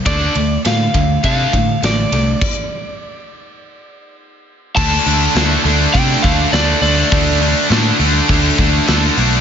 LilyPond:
<<
  \new Staff \with { instrumentName = "Lead electric guitar" } { \time 4/4 \key d \minor \tempo 4 = 102 d''4 f''4 f''4 d''4~ | d''2. r4 | a''4. r8 g''8 f''8 d''8 d''8~ | d''4 r2. | }
  \new Staff \with { instrumentName = "Distorted electric guitar" } { \time 4/4 \key d \minor <d a d'>8 <d a>8 <d a>8 <d a>8 <d a d'>8 <d a>8 <d a>8 <d a>8 | r1 | <d a d'>8 <d a d'>8 <d a d'>8 <d a d'>8 <d a d'>8 <d a d'>8 <d a d'>8 <d a d'>8 | <d a d'>8 <d a d'>8 <d a d'>8 <d a d'>8 <d a d'>8 <d a d'>8 <d a d'>8 <d a d'>8 | }
  \new Staff \with { instrumentName = "Distorted electric guitar" } { \time 4/4 \key d \minor <d a d'>8 <d a>8 <d a>8 <d a>8 <d a d'>8 <d a>8 <d a>8 <d a>8 | r1 | <d a d'>8 <d a d'>8 <d a d'>8 <d a d'>8 <d a d'>8 <d a d'>8 <d a d'>8 <d a d'>8 | <d a d'>8 <d a d'>8 <d a d'>8 <d a d'>8 <d a d'>8 <d a d'>8 <d a d'>8 <d a d'>8 | }
  \new Staff \with { instrumentName = "Overdriven electric guitar" } { \time 4/4 \key d \minor r1 | r1 | <d a d'>4. <d a d'>4. <d a d'>4 | <d a d'>4. <d a d'>4. <d a d'>4 | }
  \new Staff \with { instrumentName = "Picked electric bass" } { \clef bass \time 4/4 \key d \minor d,8 d,8 a,8 d,8 c8 a,8 a,,8 c,8 | r1 | d,8 d,8 d,8 d,8 c8 d,8 d,8 d,8 | d,4 a,8 d,8 d,8 d,8 d,8 b,,8 | }
  \new DrumStaff \with { instrumentName = "Drums" } \drummode { \time 4/4 <bd cymr>8 cymr8 <cymr sn>8 <bd cymr>8 <bd cymr>8 <bd cymr>8 <cymr sn>8 cymr8 | <cymc bd>4 r4 r4 r4 | <cymc bd>8 hho8 <hho sn>8 hho8 <hho bd>16 sn16 bd8 <hho sn>8 hho8 | <hho bd>8 hho8 <hho sn>8 hho8 <hho bd>8 bd8 <hho sn>8 hho8 | }
>>